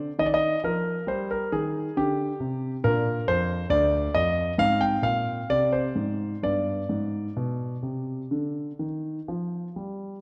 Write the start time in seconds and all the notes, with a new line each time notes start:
Already playing: C4
0.19 D#3 D#5
0.26 D5
0.34 D#5
0.64 F3 A#4
1.07 G3 C5
1.31 A#4
1.52 D#3 G#4
1.97 D3 G4
2.40 C3
2.84 A#2 D4 A#4
3.28 F2 C5
3.69 D2 D5
4.14 F2 D#5
4.58 G#2 C4 F5
4.81 G5
5.02 A#2 F5
5.50 C3 D5
5.73 C5
5.95 G#2
6.42 G2 B3 D5
6.89 G#2
7.36 B2
7.83 C3
8.31 D3
8.79 D#3
9.28 F3
9.76 G3